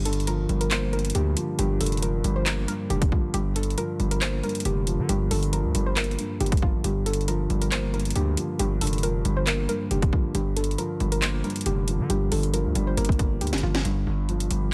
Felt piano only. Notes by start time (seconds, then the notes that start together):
Already playing: G2
0.06 D3
0.27 F3
0.49 G3
0.71 A#3
0.93 G2
1.15 D3
1.37 F3
1.59 G2
1.81 D3
2.03 F3
2.24 G3
2.46 A#3
2.68 G2
2.90 D3
3.12 F3
3.34 G2
3.56 D3
3.78 F3
4.00 G3
4.22 A#3
4.44 G2
4.65 D3
4.87 F3
5.09 G2
5.31 D3
5.53 F3
5.75 G3
5.97 A#3
6.19 G2
6.41 D3
6.63 F3
6.84 G2
7.06 D3
7.28 F3
7.50 G3
7.72 A#3
7.94 G2
8.16 D3
8.37 F3
8.60 G2
8.81 D3
9.03 F3
9.25 G3
9.47 A#3
9.69 G2
9.91 D3
10.13 F3
10.35 G2
10.57 D3
10.78 F3
11.00 G3
11.22 A#3
11.44 G2
11.66 D3
11.88 F3
12.10 G2
12.32 D3
12.54 F3
12.76 G3
12.97 A#3
13.19 G2
13.41 D3
13.63 F3
13.85 G2
14.07 D3
14.29 F3
14.51 G3